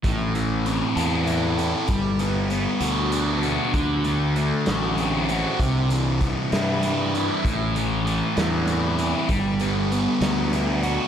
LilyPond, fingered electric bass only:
\new Staff \with { instrumentName = "Fingered electric bass" } { \clef bass \time 6/8 \key a \dorian \tempo 4. = 65 a,,4. e,4. | g,,4. d,4. | d,4. a,,4. | c,4. g,4. |
a,,4. e,4. | g,,4. d,4. | }